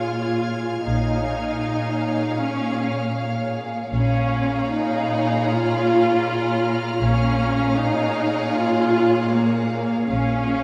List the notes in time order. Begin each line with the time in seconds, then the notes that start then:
Already playing: A#2 F4 G#4 C#5 F5 F6 G#6
0.86 A#1 A#2 D#4 G#4 C#5 F5
2.39 C#4
3.93 A#1 A#2 C#4 G#4 C#5 F5 A#5 B5
4.71 D#4
5.47 F4 F6
7.00 A#1 A#2 C#4 G#4 C#5 F5
7.66 A#5
7.78 D#4
8.55 F4
8.62 F#6
9.32 A#3
10.08 A#1 A#2 C#4 G#4 C#5 F5 C#6